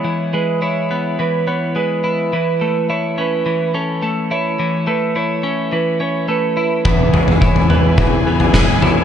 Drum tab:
SD |----------------|----------------|----------------|------------o---|
T2 |----------------|----------------|----------------|--o---o---------|
FT |----------------|----------------|----------------|o-oo-o--o--oo-o-|
BD |----------------|----------------|----------------|o---o---o---o---|